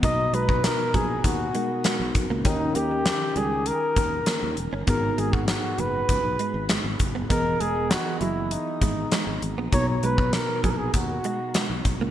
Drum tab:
HH |x-x-x-x-x-x-x-x-|x-x-x-x-x-x-x-x-|x-x-x-x-x-x-x-x-|x-x-x-x-x-x-x-x-|
SD |----o-------o---|----o-------o---|----o-------o---|----o-------o---|
BD |o--o--o-o-----o-|o---------o-----|o--o----o-----o-|o---------o-----|

HH |x-x-x-x-x-x-x-x-|
SD |----o-------o---|
BD |o--o--o-o-----o-|